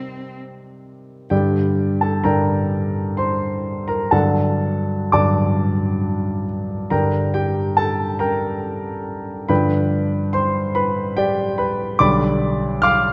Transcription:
0.00 1.24 C3 soft
0.00 1.25 D#3 soft
0.00 1.25 G3 soft
0.00 0.33 C4 soft
0.00 1.26 C4 soft
1.30 2.22 G2 soft
1.30 2.22 D3 soft
1.30 2.22 G3 soft
1.30 2.22 D4 soft
1.30 1.98 G4 soft
1.30 1.98 D5 soft
1.30 2.01 G5 soft
2.01 2.24 A4 soft
2.01 2.25 A5 soft
2.24 4.08 G2 soft
2.24 4.08 D3 soft
2.24 4.08 G3 soft
2.24 4.08 D4 soft
2.24 3.14 A#4 soft
2.24 3.15 G5 soft
2.24 3.18 A#5 medium
3.17 3.84 C5 soft
3.17 3.88 C6 medium
3.88 4.10 A#4 soft
3.88 4.12 A#5 soft
4.11 5.10 G2 soft
4.11 5.11 D3 soft
4.11 5.10 F#3 soft
4.11 5.10 D4 soft
4.11 5.10 A4 soft
4.11 5.10 F#5 soft
4.11 5.12 A5 medium
5.12 6.88 G2 soft
5.12 6.88 D3 soft
5.12 6.88 F#3 soft
5.12 6.88 D4 soft
5.12 6.44 D5 soft
5.12 6.44 A5 soft
5.12 6.48 D6 medium
6.90 9.46 G2 soft
6.90 9.45 D3 soft
6.90 9.46 G3 soft
6.90 9.46 D4 soft
6.90 7.32 A#4 soft
6.90 7.32 G5 soft
6.90 7.35 A#5 medium
7.34 7.75 G4 soft
7.34 7.77 G5 medium
7.77 8.17 A4 soft
7.77 8.20 A5 medium
8.19 9.46 A#4 soft
8.19 9.46 G5 soft
8.19 9.49 A#5 medium
9.49 11.97 G2 soft
9.49 11.97 D3 soft
9.49 11.97 F3 soft
9.49 11.97 D4 soft
9.49 10.30 B4 soft
9.49 10.30 G5 soft
9.49 10.33 B5 medium
10.33 10.74 C5 soft
10.33 10.76 C6 medium
10.75 11.15 B4 medium
10.75 11.17 B5 medium
11.17 11.56 G4 soft
11.17 11.57 D5 soft
11.17 11.59 G5 medium
11.58 11.98 B4 medium
11.58 11.99 B5 medium
11.99 13.13 B1 soft
11.99 13.13 D3 soft
11.99 13.13 G3 soft
11.99 13.13 D4 soft
11.99 12.80 D5 medium
11.99 12.80 B5 medium
11.99 12.82 D6 medium
12.82 13.13 F5 medium
12.82 13.13 D6 medium
12.82 13.13 F6 medium

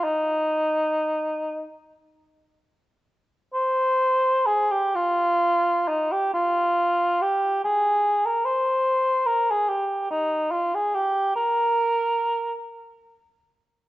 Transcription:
0.04 1.64 D#4 medium
3.54 4.48 C5 medium
4.46 4.73 G#4 medium
4.71 4.97 G4 medium
4.95 5.89 F4 medium
5.88 6.13 D#4 medium
6.12 6.33 G4 medium
6.34 7.23 F4 medium
7.22 7.63 G4 medium
7.64 8.27 G#4 medium
8.26 8.46 A#4 medium
8.45 9.27 C5 medium
9.26 9.52 A#4 medium
9.50 9.69 G#4 medium
9.68 10.10 G4 medium
10.11 10.53 D#4 medium
10.51 10.76 F4 medium
10.75 10.96 G#4 medium
10.94 11.35 G4 medium
11.36 12.55 A#4 medium

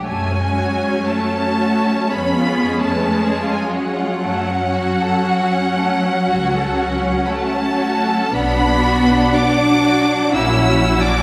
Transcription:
0.05 0.92 F#2 medium
0.05 2.08 F#3 soft
0.05 1.10 G#3 medium
0.05 0.30 A3 soft
0.05 4.18 C#4 soft
0.05 4.18 C#5 soft
0.05 1.07 G#5 medium
0.32 0.58 C#4 soft
0.58 0.84 F#4 soft
0.85 1.10 C#4 soft
1.09 2.12 A3 medium
1.09 1.36 A3 soft
1.09 2.12 A5 medium
1.35 1.61 C#4 soft
1.62 1.87 F#4 soft
1.89 2.11 C#4 soft
2.11 2.99 F2 medium
2.11 4.22 G#3 medium
2.11 2.81 B3 medium
2.11 2.36 C#4 soft
2.11 2.81 B5 medium
2.39 2.64 F4 soft
2.65 2.91 G#4 soft
2.80 3.51 A3 medium
2.80 3.50 A5 medium
2.93 3.18 B4 soft
3.18 3.44 G#4 soft
3.45 3.71 F4 soft
3.51 3.69 G#3 medium
3.51 3.70 G#5 medium
3.69 7.27 F#3 medium
3.69 3.97 C#4 soft
3.69 7.24 F#5 medium
3.97 4.23 F4 soft
4.22 5.09 F#2 medium
4.22 8.30 F#3 medium
4.22 4.48 A3 soft
4.22 8.30 C#4 soft
4.22 8.31 F#5 soft
4.49 4.75 C#4 soft
4.76 5.01 F#4 soft
5.01 5.27 A4 soft
5.27 5.53 F#4 medium
5.53 5.78 C#4 soft
5.78 6.04 A3 soft
6.04 6.30 C#4 soft
6.28 7.14 C#2 medium
6.28 6.52 F#4 medium
6.54 6.80 A4 soft
6.80 7.05 F#4 soft
7.04 7.30 C#4 soft
7.25 7.31 B5 medium
7.30 7.56 A3 medium
7.30 8.32 A3 medium
7.30 8.34 A5 medium
7.56 7.82 C#4 soft
7.83 8.09 F#4 medium
8.10 8.35 A4 medium
8.33 9.16 B1 medium
8.33 11.23 F#3 medium
8.33 9.31 B3 medium
8.33 8.58 B3 medium
8.33 10.34 D4 medium
8.33 11.23 F#5 medium
8.33 9.33 B5 medium
8.61 8.85 D4 medium
8.85 9.09 F#4 medium
9.10 9.34 D4 medium
9.33 9.59 B3 medium
9.33 10.34 D4 medium
9.33 10.34 D6 medium
9.58 9.83 D4 medium
9.85 10.09 F#4 medium
10.09 10.34 D4 medium
10.34 11.18 A#1 medium
10.34 10.58 A#3 medium
10.34 11.23 C#4 medium
10.34 11.01 E4 medium
10.34 11.00 E6 medium
10.60 10.85 C#4 medium
10.86 11.10 E4 medium
11.01 11.23 D4 medium
11.01 11.23 D6 medium
11.10 11.23 F#4 medium

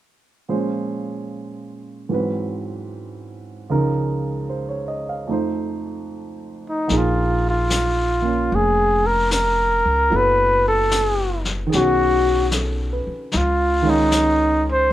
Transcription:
0.48 2.10 A#2 soft
0.48 2.10 F3 soft
0.48 2.10 G#3 soft
0.48 2.11 C#4 soft
0.48 2.10 C5 soft
2.09 3.69 G#2 soft
2.09 3.69 E3 soft
2.09 3.70 F#3 soft
2.09 3.71 C4 soft
2.14 3.71 B4 soft
3.70 5.29 C#2 soft
3.70 5.29 C#3 soft
3.70 5.27 F3 soft
3.70 5.29 D#4 soft
3.70 5.30 A#4 soft
4.50 4.86 C5 soft
4.69 5.03 C#5 soft
4.88 5.13 D#5 soft
5.09 5.37 F5 soft
5.27 6.89 F2 soft
5.27 6.86 F3 soft
5.27 6.90 A3 soft
5.27 6.89 D#4 soft
5.33 6.92 C5 soft
6.69 6.99 D#4 medium
6.88 8.47 A#1 medium
6.88 10.10 F3 soft
6.88 8.21 A#3 soft
6.88 10.11 D#4 soft
6.88 brush sweep soft
6.88 snare soft
6.92 10.12 G#4 soft
6.97 7.47 F4 medium
7.49 8.57 F4 medium
7.70 snare soft
7.70 hi-hat pedal soft
8.22 10.10 A#3 soft
8.22 10.11 C#4 soft
8.22 10.12 F4 soft
8.49 9.80 F1 medium
8.49 brush sweep soft
8.55 9.08 G#4 medium
9.07 9.32 A#4 medium
9.31 10.18 A#4 medium
9.31 snare soft
9.31 hi-hat pedal soft
9.85 10.10 C#2 medium
10.10 11.68 F#1 medium
10.10 11.71 F#3 soft
10.10 11.71 B3 soft
10.10 11.71 E4 soft
10.10 11.72 A4 soft
10.10 brush sweep soft
10.16 10.67 B4 medium
10.68 11.42 A4 medium
10.91 snare soft
10.91 hi-hat pedal soft
11.45 snare soft
11.67 13.29 D#3 soft
11.67 13.30 G#4 soft
11.72 13.01 B1 medium
11.72 13.32 C#4 soft
11.72 12.49 F#4 medium
11.72 brush sweep soft
11.72 snare soft
11.77 13.34 F#4 soft
12.52 13.14 A4 soft
12.52 snare soft
12.52 hi-hat pedal soft
12.93 13.47 B4 soft
13.07 muted upright bass stroke soft
13.32 14.87 C#2 medium
13.32 13.39 D#4 medium
13.32 brush sweep soft
13.32 snare soft
13.37 13.91 F4 medium
13.82 14.93 D#3 medium
13.82 14.90 G#3 soft
13.82 14.93 C#4 soft
13.87 14.66 D#4 medium
13.87 14.93 F4 medium
14.12 snare soft
14.12 hi-hat pedal soft
14.72 14.93 C5 medium

